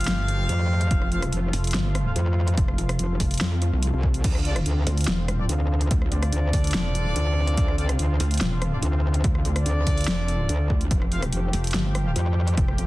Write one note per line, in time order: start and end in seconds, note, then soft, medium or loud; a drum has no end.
0.00 4.20 F3 medium
0.00 4.20 A3 medium
0.00 1.09 F4 loud
0.00 0.88 G4 medium
0.00 1.09 C5 loud
0.00 1.09 F5 loud
0.00 closed hi-hat medium
0.04 snare loud
0.04 closed hi-hat medium
0.08 0.48 G1 loud
0.08 closed hi-hat medium
0.28 closed hi-hat medium
0.49 0.89 F2 loud
0.49 closed hi-hat medium
0.81 closed hi-hat soft
0.91 1.31 F1 loud
0.91 4.21 F4 medium
0.91 kick loud
0.91 closed hi-hat medium
1.02 cross-stick medium
1.12 1.20 F4 loud
1.12 1.20 C5 medium
1.12 1.20 F5 loud
1.12 closed hi-hat medium
1.22 cross-stick medium
1.22 closed hi-hat medium
1.33 1.52 F1 medium
1.33 closed hi-hat medium
1.53 1.73 F1 loud
1.53 open hi-hat loud
1.64 closed hi-hat soft
1.67 closed hi-hat medium
1.71 2.14 G1 medium
1.71 snare loud
1.71 closed hi-hat medium
1.95 cross-stick medium
1.95 closed hi-hat medium
2.06 2.11 F4 medium
2.06 2.11 C5 medium
2.06 2.11 F5 medium
2.16 2.56 F2 loud
2.16 closed hi-hat medium
2.48 closed hi-hat soft
2.58 2.77 F1 loud
2.58 kick loud
2.58 closed hi-hat medium
2.68 cross-stick medium
2.78 2.98 F1 loud
2.78 closed hi-hat medium
2.89 cross-stick medium
2.89 closed hi-hat medium
2.99 3.18 F1 loud
2.99 closed hi-hat medium
3.20 3.39 F1 loud
3.20 kick medium
3.20 open hi-hat loud
3.31 closed hi-hat medium
3.34 closed hi-hat medium
3.38 snare loud
3.38 closed hi-hat medium
3.41 3.71 F2 loud
3.41 closed hi-hat medium
3.62 closed hi-hat medium
3.73 3.92 C2 medium
3.83 closed hi-hat medium
3.93 4.23 C2 loud
4.03 kick medium
4.14 closed hi-hat soft
4.24 4.64 D2 medium
4.24 10.87 D3 medium
4.24 10.87 C4 medium
4.24 10.87 F4 medium
4.24 kick loud
4.24 closed hi-hat medium
4.24 crash medium
4.35 cross-stick medium
4.45 4.54 D4 loud
4.45 4.54 A4 medium
4.45 4.54 D5 loud
4.45 closed hi-hat medium
4.56 cross-stick medium
4.56 closed hi-hat medium
4.66 4.85 D2 medium
4.66 closed hi-hat medium
4.87 5.06 D2 loud
4.87 open hi-hat loud
4.98 closed hi-hat medium
5.01 closed hi-hat medium
5.04 5.48 E1 loud
5.04 snare loud
5.04 closed hi-hat medium
5.08 closed hi-hat medium
5.28 cross-stick medium
5.28 closed hi-hat medium
5.39 5.44 D4 medium
5.39 5.44 A4 medium
5.39 5.44 D5 medium
5.49 5.89 D2 loud
5.49 closed hi-hat medium
5.81 closed hi-hat soft
5.91 6.10 D2 loud
5.91 kick loud
5.91 closed hi-hat medium
6.02 cross-stick medium
6.12 6.31 D2 loud
6.12 7.76 D4 loud
6.12 7.76 A4 loud
6.12 7.76 D5 loud
6.12 closed hi-hat medium
6.23 cross-stick medium
6.23 closed hi-hat medium
6.32 6.52 D2 loud
6.32 closed hi-hat medium
6.53 6.73 D2 loud
6.53 kick medium
6.53 open hi-hat loud
6.64 closed hi-hat medium
6.67 closed hi-hat medium
6.71 7.14 E1 loud
6.71 snare loud
6.71 closed hi-hat medium
6.74 closed hi-hat medium
6.95 closed hi-hat medium
7.16 7.56 D2 loud
7.16 closed hi-hat medium
7.47 closed hi-hat soft
7.58 7.98 D2 medium
7.58 kick loud
7.58 closed hi-hat medium
7.68 cross-stick soft
7.78 7.87 D4 loud
7.78 7.87 A4 medium
7.78 7.87 D5 loud
7.78 closed hi-hat medium
7.89 cross-stick medium
7.89 closed hi-hat medium
7.99 8.18 D2 loud
7.99 closed hi-hat medium
8.20 8.39 D2 loud
8.20 open hi-hat loud
8.31 closed hi-hat medium
8.34 closed hi-hat medium
8.38 8.81 E1 loud
8.38 snare loud
8.38 closed hi-hat medium
8.41 closed hi-hat medium
8.62 cross-stick medium
8.62 closed hi-hat medium
8.73 8.77 D4 medium
8.73 8.77 A4 medium
8.73 8.77 D5 medium
8.83 9.23 D2 loud
8.83 closed hi-hat medium
9.14 closed hi-hat soft
9.24 9.43 D2 loud
9.24 kick loud
9.24 closed hi-hat medium
9.35 cross-stick medium
9.45 9.64 D2 loud
9.45 10.90 D4 loud
9.45 10.90 A4 loud
9.45 10.90 D5 loud
9.45 closed hi-hat medium
9.56 cross-stick medium
9.56 closed hi-hat medium
9.66 9.85 D2 loud
9.66 closed hi-hat medium
9.87 10.06 D2 loud
9.87 kick medium
9.87 open hi-hat medium
9.98 closed hi-hat soft
10.01 closed hi-hat medium
10.04 10.48 F1 loud
10.04 snare loud
10.04 closed hi-hat medium
10.28 closed hi-hat medium
10.49 10.68 D2 loud
10.49 closed hi-hat medium
10.70 10.89 D2 loud
10.70 kick medium
10.81 closed hi-hat soft
10.91 11.31 F1 medium
10.91 12.87 F3 medium
10.91 12.87 A3 medium
10.91 12.87 G4 medium
10.91 kick loud
10.91 closed hi-hat medium
11.02 cross-stick medium
11.12 11.20 F4 loud
11.12 11.20 C5 medium
11.12 11.20 F5 loud
11.12 closed hi-hat medium
11.22 cross-stick medium
11.22 closed hi-hat medium
11.33 11.52 F1 loud
11.33 closed hi-hat medium
11.53 11.73 F1 loud
11.53 open hi-hat medium
11.64 closed hi-hat soft
11.67 closed hi-hat medium
11.71 snare loud
11.71 closed hi-hat medium
11.74 12.14 G1 loud
11.74 closed hi-hat medium
11.95 cross-stick medium
11.95 closed hi-hat medium
12.06 12.11 F4 medium
12.06 12.11 C5 medium
12.06 12.11 F5 medium
12.16 12.56 F2 loud
12.16 closed hi-hat medium
12.47 closed hi-hat soft
12.57 12.77 F1 loud
12.57 kick loud
12.57 closed hi-hat medium
12.68 cross-stick medium
12.78 12.87 F1 loud
12.78 12.87 F4 loud
12.78 12.87 C5 loud
12.78 12.87 F5 loud
12.78 closed hi-hat medium